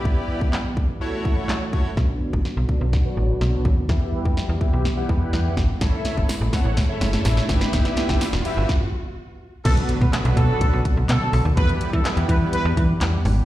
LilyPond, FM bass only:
\new Staff \with { instrumentName = "FM bass" } { \clef bass \time 4/4 \key b \minor \tempo 4 = 125 r1 | b,,16 r8 a,,16 r16 b,,16 r16 b,,8 r16 a,,8 b,,8 dis,8 | e,16 r8 e,16 r16 e,16 r16 b,,8 r16 e,8 e,8 gis,,8 | a,,16 r8 fis,,16 r16 a,,16 r16 a,,8 r16 fis,,8 a,,8 g,,8 |
g,,16 r8 g,,16 r16 e,,16 r16 g,,16 r2 | b,,8 r16 b,16 r16 b,,16 b,8 r16 b,,16 r16 b,,16 b,16 r16 b,,16 dis,16 | e,8 r16 e16 r16 e,16 e8 r16 e,16 e8 e,8 gis,,8 | }